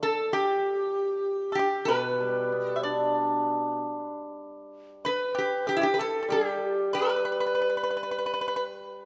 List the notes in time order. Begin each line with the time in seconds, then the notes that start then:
0.03 A4
0.33 G4
1.52 G4 A4
1.59 G4
1.85 B2 B4
1.91 B4
2.21 G3
2.41 A4
2.52 B3
2.69 A4
2.76 E5
2.83 D4 D5
5.05 B4
5.35 G4
5.67 G4
5.77 E4
5.81 G4
5.94 B4
5.99 A4
6.23 A4
6.28 G3 G4
6.39 A4
6.48 G4
6.57 A4
6.65 G4
6.93 B4
7.02 B4
7.09 B4
7.16 B4
7.25 B4
7.32 B4
7.40 B4
7.46 B4
7.55 B4
7.62 B4
7.70 B4
7.77 B4
7.83 B4
7.91 B4
7.97 B4
8.03 B4
8.11 B4
8.18 B4
8.26 B4
8.34 B4
8.41 B4
8.48 B4
8.56 B4